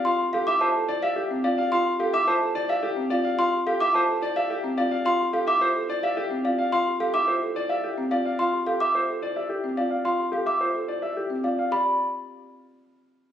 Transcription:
X:1
M:3/4
L:1/16
Q:1/4=108
K:C
V:1 name="Celesta"
c' z f d' a z2 f z2 f z | c' z f d' a z2 f z2 f z | c' z f d' a z2 f z2 f z | c' z f d' z3 f z2 f z |
c' z f d' z3 f z2 f z | c' z f d' z6 f z | c' z f d' z6 f z | b2 z8 z2 |]
V:2 name="Grand piano"
f z G e c z d e G z d f | f z G e c z d e G z d f | f z G e c z d e G z d f | f z G e c z d e G z d f |
f z G e c z d e G z d f | f z G e c z d e G z d f | f z G e c z d e G z d f | d2 z8 z2 |]
V:3 name="Marimba"
F G A E F A E G E C F G | F G A E F A E G E C F G | F G A E F A E G E C F G | F G A E F A E G E C F z |
F G A E F A E G E C F z | F G A z F A E G E C F z | F G A z F A E G E C F z | G2 z8 z2 |]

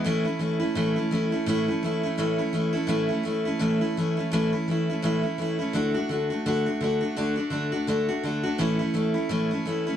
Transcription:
X:1
M:4/4
L:1/8
Q:"Swing" 1/4=168
K:A
V:1 name="Steel-string acoustic guitar"
[A,,E,A,CE] [A,CE] [E,A,CE] [A,CE] [A,,E,A,CE] [A,CE] [E,A,CE] [A,CE] | [A,,E,A,CE] [A,CE] [E,A,CE] [A,CE] [A,,E,A,CE] [A,CE] [E,A,CE] [A,CE] | [A,,E,A,CE] [A,CE] [E,A,CE] [A,CE] [A,,E,A,CE] [A,CE] [E,A,CE] [A,CE] | [A,,E,A,CE] [A,CE] [E,A,CE] [A,CE] [A,,E,A,CE] [A,CE] [E,A,CE] [A,CE] |
[D,A,DF] [A,DF] [D,A,DF] [A,DF] [D,A,DF] [A,DF] [D,A,DF] [A,DF] | [D,A,DF] [A,DF] [D,A,DF] [A,DF] [D,A,DF] [A,DF] [D,A,DF] [A,DF] | [A,,E,A,CE] [A,CE] [E,A,CE] [A,CE] [A,,E,A,CE] [A,CE] [E,A,CE] [A,CE] |]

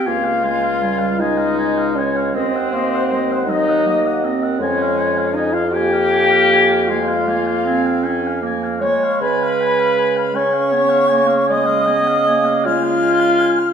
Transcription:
X:1
M:12/8
L:1/16
Q:3/8=52
K:Dblyd
V:1 name="Oboe"
a f a f a f a f a f a f e _g e g e g e g e g e g | a f a f a f a f a f a f a f a f a f a f a f a f | a f a f a f a f a f a f a f a f a f a f a f a f |]
V:2 name="Flute"
f6 e4 d2 c6 e4- e z | d4 e f g6 f8 z2 d'2 | _c'6 d'6 e'6 f'6 |]
V:3 name="French horn"
F6 E4 D2 C6 E4- E z | D4 E F G6 F8 z2 d2 | _c6 d6 e6 F6 |]
V:4 name="Clarinet"
B,2 A,2 G,2 A,6 C2 B,2 A,2 _G,2 B,2 C2 | A,4 z2 B,6 A,2 B,2 C2 D2 B,2 A,2- | A,6 D2 _C2 B,2 A,2 C2 B,2 A,4 z2 |]
V:5 name="Bassoon" clef=bass
D,,12 E,,12 | F,,16- F,,6 z2 | D,24 |]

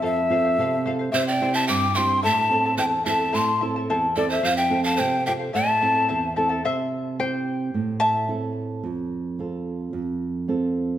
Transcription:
X:1
M:2/4
L:1/16
Q:1/4=109
K:Am
V:1 name="Quena"
e8 | e g2 a d'2 c'2 | a4 g2 a2 | c'2 z4 d e |
f g2 a g2 g2 | a6 z2 | z8 | z8 |
z8 | z8 |]
V:2 name="Pan flute"
z8 | c d2 e g2 g2 | e4 c2 e2 | a2 z4 A c |
c e2 f c2 e2 | e6 z2 | z8 | z8 |
z8 | z8 |]
V:3 name="Charango"
[Acf]2 [Acf] [cf] [Acf]2 [Acf] [cf] | [EGceg]2 [Eceg] [Ecg] [EGceg]2 [Eceg] [Ecg] | [EAcea]2 [EAea] [EAa] [EAcea]2 [EAea] [EAa] | [EAcea]2 [EAea] [EAa] [EAcea]2 [EAea] [EAa] |
[Acf]2 [Acf] [cf] [Acf]2 [Acf] [cf] | [EAcea]2 [EAea] [EAa] [EAcea]2 [EAea] [EAa] | [ce]4 [cg]4- | [cg]2 [ea]4 z2 |
z8 | z8 |]
V:4 name="Nylon-string guitar"
F,,2 [CFA]2 C,2 [CFA]2 | C,2 [CEG]2 G,,2 [CEG]2 | A,,2 [CEA]2 E,,2 [CEA]2 | A,,2 [CEA]2 E,,2 [CEA]2 |
F,,2 [CFA]2 C,2 [CFA]2 | A,,2 [CEA]2 E,,2 [CEA]2 | C,4 [CEG]4 | A,,4 [CEA]4 |
F,,4 [CFA]4 | F,,4 [CFA]4 |]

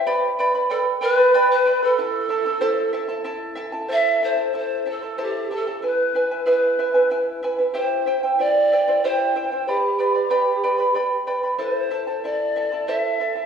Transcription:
X:1
M:3/4
L:1/16
Q:1/4=94
K:Am
V:1 name="Charango"
[GBdgb]2 [Bdgb] [Bdb] [Bdgb]2 [Bdgb] [Bdb] [GBdgb]2 [Bdgb] [Bdb] | [EAea]2 [EAea] [EAa] [EAcea]2 [EAea] [EAa] [EAea]2 [EAea] [EAa] | [EAcea]2 [EAea] [EAa] [EAea]2 [EAea] [EAa] [EAcea]2 [EAea] [EAa] | [EBe^g]2 [EBeg] [EBg] [E^GBeg]2 [EBeg] [EBg] [EBeg]2 [EBeg] [EBg] |
[EGceg]2 [Eceg] [Ecg] [Eceg]2 [Eceg] [Ecg] [EGceg]2 [Eceg] [Ecg] | [Bdgb]2 [Bdgb] [Bdb] [GBdgb]2 [Bdgb] [Bdb] [Bdgb]2 [Bdgb] [Bdb] | [EAcea]2 [EAea] [EAa] [EAea]2 [EAea] [EAa] [EAcea]2 [EAea] [EAa] |]
V:2 name="Pan flute"
z4 A2 B3 B2 A- | A8- A2 z2 | e2 c2 c2 A2 G2 A2 | B4 B6 z2 |
c4 d4 c4 | G8- G2 z2 | c4 d4 e4 |]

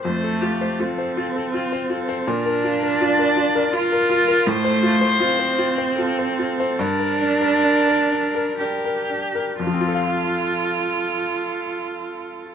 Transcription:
X:1
M:3/4
L:1/16
Q:1/4=78
K:F
V:1 name="Viola"
c2 G2 A4 F2 A2 | B4 d4 B4 | c8 A4 | B8 B2 z2 |
A12 |]
V:2 name="Upright piano"
F,, A F c F c F A F c F c | B,, B F B F B F B F B F B | A,, c F c F c F c F c F c | G,, B D B D B D B D B D B |
[F,,F,CFAf]12 |]
V:3 name="Cello"
A,4 C8 | D8 F4 | A,4 C8 | D8 G4 |
F12 |]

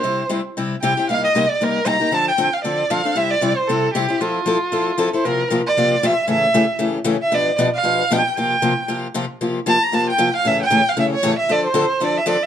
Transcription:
X:1
M:4/4
L:1/8
Q:"Swing" 1/4=231
K:Cmix
V:1 name="Violin"
c2 z4 g2 | f _e2 d B2 b2 | a g2 f d2 f2 | e d2 c A2 G2 |
F6- F c | B2 z d3 e2 | e4 z3 e | d2 z f3 g2 |
g4 z4 | z2 a b a g2 f | e g2 f e ^c2 e | d c3 d e d e |]
V:2 name="Steel-string acoustic guitar"
[C,G,CEG] z [C,G,CEG] z [C,G,CEG] z [C,G,CEG] [CEG] | [C,G,B,_EG] z [C,G,B,EG] z [C,G,B,EG] z [C,G,B,EG] [B,EG] | [D,F,CDA] z [D,F,CDA] z [D,F,CDA] z [D,F,CDA] [CDA] | [C,G,CEG] z [C,G,CEG] z [C,G,CEG] z [C,G,CEG] [CEG] |
[F,CEA] z [F,CEA] z [F,CEA] z [F,CEA] [CEA] | [C,F,B,FG] z [C,F,B,FG] z [C,F,B,FG] z [C,F,B,FG] z | [A,,^C,E,A,^CG] z [A,,C,E,A,CG] z [A,,C,E,A,CG] z [A,,C,E,A,CG] z | [=B,,F,=B,DG=B] z [B,,F,B,DGB] z [B,,F,B,DGB] z [B,,F,B,DGB] z |
[C,F,B,FG] z [C,F,B,FG] z [C,F,B,FG] z [C,F,B,FG] z | [C,F,B,FG] z [C,F,B,FG] z [C,F,B,FG] z [C,F,B,FG] z | [A,,^C,E,A,^CG] z [A,,C,E,A,CG] z [A,,C,E,A,CG] z [A,,C,E,A,CG] z | [D,F,CDA] z [D,F,CDA] z [D,F,CDA] z [D,F,CDA] z |]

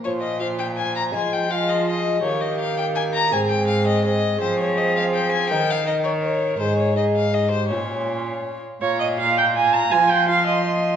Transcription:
X:1
M:3/4
L:1/8
Q:1/4=165
K:Bbdor
V:1 name="Violin"
d e f g a b | a g f e e2 | d e f g a b | a g f e e2 |
c d e f g a | g f e d d2 | c d e f e c | d4- d z |
b2 b4 | c'2 c'4 |]
V:2 name="Viola"
F2 F4 | F2 F4 | G6 | A4 A2 |
A6 | B2 B4 | A2 A2 A G | F4- F z |
d e f g a b | a g f e e2 |]
V:3 name="Bassoon"
F,2 F,4 | A,2 A,4 | B,6 | C4 C2 |
C6 | E2 E3 z | E2 E2 E2 | D4- D z |
F2 F4 | F2 F4 |]
V:4 name="Cello" clef=bass
B,,6 | F,6 | E,6 | A,,6 |
F,6 | E,6 | A,,6 | B,,4- B,, z |
B,,6 | F,6 |]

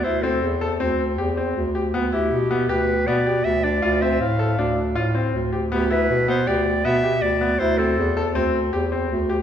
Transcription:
X:1
M:5/4
L:1/8
Q:1/4=159
K:Ephr
V:1 name="Clarinet"
c A2 z6 z | z G3 B2 d2 e d- | d e f3 z4 z | G B2 c d2 e2 d2 |
c A2 z6 z |]
V:2 name="Grand piano"
E C2 A C2 G C2 G | B, E2 B, G2 B, G2 D | F C2 A D2 F C2 G | B, E2 B, G2 B, G2 B, |
E C2 A C2 G C2 G |]
V:3 name="Bass clarinet" clef=bass
D,,2 E,,2 D,,2 E,,2 D,,2 | D,,2 B,,2 D,,2 B,,2 D,,2 | D,,2 A,,2 D,,2 A,,2 D,,2 | D,,2 B,,2 D,,2 B,,2 D,,2 |
D,,2 E,,2 D,,2 E,,2 D,,2 |]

